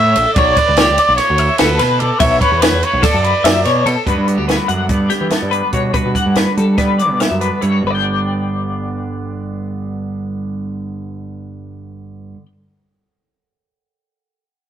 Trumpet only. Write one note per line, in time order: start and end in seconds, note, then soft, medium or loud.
0.00 0.33 E5 loud
0.33 1.13 D5 loud
1.16 1.55 C#5 loud
1.58 2.02 B4 medium
2.00 2.20 A4 medium
2.19 2.39 C#5 loud
2.40 2.63 C#5 loud
2.61 2.85 B4 medium
2.84 3.06 C#5 medium
3.04 3.86 D5 medium